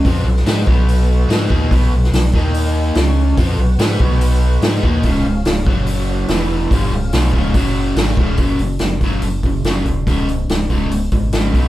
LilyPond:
<<
  \new Staff \with { instrumentName = "Tonewheel organ" } { \time 4/4 \key des \mixolydian \tempo 4 = 144 <ces' ges' ces'' ges''>1~ | <ces' ges' ces'' ges''>4. <bes ees' bes' ees''>4. <des' aes' des'' aes''>4 | <ces' ges' ces'' ges''>1 | <f' aes' des'' f''>4. <des' ges' des'' ges''>4. <b e' b' e''>4 |
<f' aes' des'' f''>2 <des' ges' des'' ges''>4 <f' aes' des'' f''>4 | r1 | r1 | }
  \new Staff \with { instrumentName = "Overdriven electric guitar" } { \clef bass \time 4/4 \key des \mixolydian <f c' f'>8 <ces ges>8 <aes ees' aes'>8 <ces ges ces'>4. <aes ees' aes'>8 <ees bes ees'>8 | <ces ges ces'>8 <ces ges>8 <ces ges>8 <ees bes ees'>4. <des aes des'>4 | <f c' f'>8 <ces ges>8 <aes ees' aes'>8 <ces ges ces'>4. <aes ees' aes'>8 <ees bes ees'>8 | <des, aes, des>8 <des, aes,>8 <des, aes,>8 <ges, des ges>4. <e, b, e>4 |
<g, d g>8 <des, aes,>8 <ces ges ces'>8 <des, aes, des>8 <ges, des ges>4 <aes, ees aes>8 <des, aes, des>8 | <ges, des ges>8 <ges, des>8 <ges, des>8 <ges, des ges>8 <ges, des>8 <ges, des>8 <ges, des ges>8 <ges, des>8 | <des, aes, des>8 <des, aes,>8 <des, aes,>8 <des, aes, des>8 <des, aes,>8 <des, aes,>8 <des, aes, des>8 <ces ges ces'>8 | }
  \new Staff \with { instrumentName = "Sub bass" } { \clef bass \time 4/4 \key des \mixolydian f,8 ces,8 aes,8 ces,4. aes,8 ees,8 | ces,8 ces,8 ces,8 ees,4. des,4 | f,8 ces,8 aes,8 ces,4. aes,8 ees,8 | des,,8 des,,8 des,,8 ges,,4. e,,4 |
g,,8 des,,8 ces,8 des,,8 ges,,4 aes,,8 des,,8 | ges,,8 ges,,8 ges,,8 ges,,8 ges,,8 ges,,8 ges,,8 ees,,8 | des,,8 des,,8 des,,8 des,,8 des,,8 aes,,8 aes,,8 ces,8 | }
  \new DrumStaff \with { instrumentName = "Drums" } \drummode { \time 4/4 <hho bd>8. sn16 <hho sn>8 bd8 hho4 <hho sn>8 bd8 | <hho bd>8. sn16 <hho sn>8 bd8 hho4 <hho sn>4 | <hho bd>4 <hho sn>8 bd8 hho4 <hho sn>16 sn16 bd8 | <hho bd>4 <hho sn>8 bd8 hho4 <hho sn>4 |
<hho bd>4 <hho sn>8 bd8 <hho bd>4 <hho sn>16 sn16 bd8 | <hho bd>8 hho8 <hho sn>8 <hho bd>8 hho8 <hho bd>8 <hho sn>8 <hho bd>8 | <hho bd>8 hho8 <hho sn>8 <hho bd>8 hho8 <hho bd>8 <hho sn>8 <hho bd>8 | }
>>